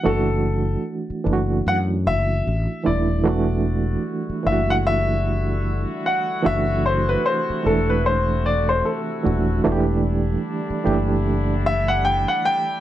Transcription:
0.03 0.75 F#1 medium
0.03 0.96 E3 medium
0.03 0.96 A3 medium
0.03 0.97 D4 medium
0.03 0.97 F#4 loud
0.03 0.81 A4 medium
1.10 muted fretless electric bass stroke soft
1.24 1.61 F#1 medium
1.24 2.45 E3 medium
1.24 2.45 A3 medium
1.24 2.45 D4 medium
1.24 1.33 E4 medium
1.33 2.49 F#4 medium
1.67 2.08 F#2 medium
1.67 1.76 F#5 loud
2.07 2.41 F#1 medium
2.07 2.82 E5 loud
2.47 2.66 A1 medium
2.83 3.27 D#1 medium
2.83 3.16 E3 medium
2.83 3.16 A3 medium
2.83 3.16 D4 medium
2.83 3.17 E4 medium
2.83 4.01 D5 medium
3.24 3.96 E1 medium
3.24 6.41 D3 medium
3.24 4.16 E3 medium
3.24 6.41 G3 medium
3.24 4.16 A3 medium
3.24 4.17 D4 medium
3.24 9.60 E4 medium
3.24 9.61 F#4 medium
3.24 4.17 F#4 medium
4.29 muted fretless electric bass stroke soft
4.43 5.84 F#1 medium
4.43 5.64 E3 medium
4.43 5.65 A3 medium
4.43 5.65 D4 medium
4.43 4.52 E4 medium
4.43 4.69 E5 medium
4.52 5.69 F#4 medium
4.70 4.75 F#5 loud
4.87 6.09 E5 loud
6.06 6.46 F#5 medium
6.43 7.15 F#1 medium
6.43 9.61 C3 medium
6.43 7.35 E3 medium
6.43 7.36 A3 medium
6.43 9.61 A3 medium
6.43 7.36 D4 medium
6.43 7.37 F#4 loud
6.43 6.86 E5 medium
6.86 7.09 C5 medium
7.09 7.26 B4 medium
7.26 7.66 C5 medium
7.50 muted fretless electric bass stroke soft
7.63 8.81 E1 medium
7.63 8.84 E3 medium
7.63 8.85 A3 medium
7.63 8.85 D4 medium
7.63 8.85 A4 medium
7.63 7.89 A4 medium
7.90 8.06 B4 medium
8.06 8.46 C5 medium
8.46 8.69 D5 medium
8.69 8.86 C5 medium
8.85 9.61 A4 medium
9.23 9.60 D#1 medium
9.23 9.55 E3 medium
9.23 9.56 A3 medium
9.23 9.56 D4 medium
9.23 9.57 F#4 medium
9.63 10.35 E1 medium
9.63 12.80 D3 medium
9.63 10.56 E3 medium
9.63 12.80 G3 medium
9.63 10.56 A3 medium
9.63 12.80 D4 medium
9.63 10.57 D4 medium
9.63 12.80 E4 medium
9.63 9.72 F#4 medium
9.72 10.60 G4 loud
10.70 muted fretless electric bass stroke soft
10.84 12.25 F#1 medium
10.84 12.05 E3 medium
10.84 12.05 A3 medium
10.84 12.05 D4 medium
10.84 12.05 G4 loud
11.66 11.89 E5 loud
11.88 12.04 F#5 medium
12.05 12.28 G5 loud
12.28 12.45 F#5 medium
12.45 12.80 G5 loud

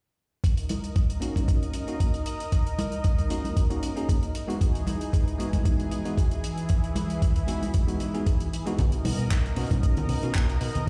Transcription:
0.44 4.31 D#4 medium
0.44 4.31 A#4 medium
0.44 4.31 D#5 medium
0.44 kick loud
0.44 closed hi-hat medium
0.57 closed hi-hat medium
0.69 closed hi-hat medium
0.69 high conga medium
0.84 closed hi-hat soft
0.96 kick loud
0.96 closed hi-hat medium
1.10 closed hi-hat medium
1.20 1.84 A#3 medium
1.20 1.85 C#4 medium
1.20 1.85 D#4 medium
1.20 1.85 F#4 medium
1.20 closed hi-hat loud
1.36 kick medium
1.36 closed hi-hat medium
1.36 high conga medium
1.48 kick loud
1.48 closed hi-hat medium
1.63 closed hi-hat medium
1.74 closed hi-hat medium
1.87 2.01 A#3 medium
1.87 2.01 C#4 medium
1.87 2.01 D#4 medium
1.87 2.02 F#4 medium
1.87 closed hi-hat soft
2.00 kick loud
2.00 closed hi-hat medium
2.14 closed hi-hat soft
2.26 closed hi-hat medium
2.40 closed hi-hat medium
2.52 kick loud
2.52 closed hi-hat medium
2.67 closed hi-hat soft
2.79 closed hi-hat medium
2.79 high conga medium
2.92 closed hi-hat soft
3.04 kick loud
3.04 closed hi-hat medium
3.19 kick medium
3.19 closed hi-hat soft
3.30 3.45 A#3 medium
3.30 3.46 C#4 medium
3.30 3.46 D#4 medium
3.30 3.46 F#4 medium
3.30 closed hi-hat medium
3.44 closed hi-hat soft
3.44 high conga medium
3.57 kick loud
3.57 closed hi-hat medium
3.70 3.93 A#3 medium
3.70 3.93 C#4 medium
3.70 3.94 D#4 medium
3.70 3.94 F#4 medium
3.70 closed hi-hat soft
3.83 closed hi-hat medium
3.96 4.10 A#3 medium
3.96 4.10 C#4 medium
3.96 4.10 D#4 medium
3.96 4.10 G#4 medium
3.96 closed hi-hat soft
4.09 kick loud
4.09 closed hi-hat medium
4.23 closed hi-hat soft
4.35 8.74 E3 medium
4.35 6.42 D#4 medium
4.35 8.74 G#4 medium
4.35 closed hi-hat medium
4.48 4.62 G#3 medium
4.48 4.62 B3 medium
4.48 4.62 D#4 medium
4.48 4.62 F#4 loud
4.48 closed hi-hat medium
4.61 kick loud
4.61 closed hi-hat medium
4.75 closed hi-hat soft
4.87 closed hi-hat medium
4.87 high conga medium
5.01 closed hi-hat soft
5.13 kick loud
5.13 closed hi-hat medium
5.28 closed hi-hat soft
5.38 6.02 G#3 medium
5.38 6.02 B3 medium
5.38 6.03 D#4 medium
5.38 6.03 F#4 medium
5.38 closed hi-hat medium
5.53 kick medium
5.53 closed hi-hat medium
5.53 high conga medium
5.65 kick loud
5.65 closed hi-hat medium
5.80 closed hi-hat soft
5.92 closed hi-hat medium
6.05 6.18 G#3 medium
6.05 6.19 B3 medium
6.05 6.19 D#4 medium
6.05 6.19 F#4 medium
6.05 closed hi-hat soft
6.18 kick loud
6.18 closed hi-hat medium
6.31 closed hi-hat soft
6.44 8.76 E4 medium
6.44 closed hi-hat medium
6.58 closed hi-hat soft
6.69 kick loud
6.69 closed hi-hat medium
6.84 closed hi-hat soft
6.96 closed hi-hat medium
6.96 high conga medium
7.10 closed hi-hat soft
7.22 kick loud
7.22 closed hi-hat medium
7.36 kick medium
7.36 closed hi-hat medium
7.47 7.63 G#3 medium
7.47 7.63 B3 medium
7.47 7.63 D#4 medium
7.47 7.63 F#4 medium
7.47 closed hi-hat medium
7.62 closed hi-hat soft
7.62 high conga medium
7.74 kick loud
7.74 closed hi-hat medium
7.87 8.11 G#3 medium
7.87 8.11 B3 medium
7.87 8.11 D#4 medium
7.87 8.11 F#4 medium
7.87 closed hi-hat soft
8.00 closed hi-hat medium
8.14 8.27 G#3 medium
8.14 8.27 B3 medium
8.14 8.28 D#4 medium
8.14 8.28 G#4 medium
8.14 closed hi-hat soft
8.26 kick loud
8.26 closed hi-hat medium
8.40 closed hi-hat medium
8.53 closed hi-hat medium
8.66 8.77 G#3 medium
8.66 8.77 B3 medium
8.66 8.77 D#4 medium
8.66 8.78 F#4 medium
8.66 closed hi-hat soft
8.79 8.90 B1 medium
8.79 10.89 D#4 medium
8.79 10.89 A#4 medium
8.79 10.89 D#5 medium
8.79 kick loud
8.79 closed hi-hat medium
8.79 low conga medium
8.92 closed hi-hat medium
9.05 9.16 B2 medium
9.05 open hi-hat loud
9.05 high conga medium
9.18 9.28 B2 medium
9.18 closed hi-hat soft
9.31 9.42 B1 medium
9.31 kick loud
9.31 clap loud
9.31 closed hi-hat medium
9.46 closed hi-hat soft
9.56 9.68 B2 medium
9.56 10.19 A#3 medium
9.56 10.20 C#4 medium
9.56 10.20 D#4 medium
9.56 10.20 F#4 medium
9.56 open hi-hat medium
9.71 9.81 B2 medium
9.71 kick medium
9.71 closed hi-hat soft
9.71 high conga medium
9.83 9.94 B1 medium
9.83 kick loud
9.83 closed hi-hat medium
9.97 closed hi-hat soft
9.97 low conga medium
10.09 10.20 B2 medium
10.09 open hi-hat medium
10.23 10.33 B2 medium
10.23 10.36 A#3 medium
10.23 10.36 C#4 medium
10.23 10.36 D#4 medium
10.23 10.37 F#4 medium
10.23 closed hi-hat soft
10.35 10.57 B1 medium
10.35 kick loud
10.35 clap loud
10.35 closed hi-hat medium
10.50 closed hi-hat medium
10.61 10.72 B2 medium
10.61 open hi-hat medium
10.75 10.85 B2 medium
10.75 closed hi-hat medium
10.75 low conga medium

